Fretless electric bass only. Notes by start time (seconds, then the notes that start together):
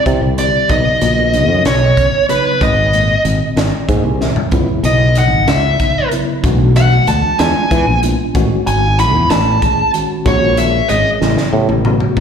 0.06 C3
0.21 C2
0.70 B1
1.02 A#1
1.49 F#2
1.65 B1
2.61 G#1
3.25 G#1
3.56 G#1
3.89 G#2
4.04 C2
4.52 C#2
4.83 B1
5.32 G#1
5.47 C#2
6.44 B1
7.07 D2
7.39 E2
7.71 E3
7.87 A#1
8.35 A1
8.67 G#1
9.15 E2
9.30 A1
10.26 A#1
10.90 G#1
11.21 A1
11.53 A2
11.69 A1